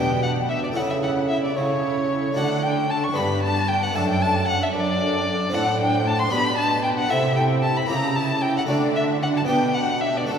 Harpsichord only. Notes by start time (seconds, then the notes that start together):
Already playing: B2 B3 D4 G4
0.72 A3 E4 G4
0.76 C#3
1.57 C#3
2.33 A3 D4 F#4
2.38 D3
3.13 B3 D4 G4
3.17 G2
3.93 F#2 A3 D4 A4
4.75 F#2
5.50 C4 D4 A4
5.54 A2
6.29 B3 D4 G4
6.33 B2
7.08 A3 E4 A4
7.13 C3
7.87 A#3 E4 G4
7.91 C#3
8.65 A3 D4 F#4
8.70 D3
9.45 B3 D4 G4
9.49 B2
10.25 A3 D4 F#4
10.30 D3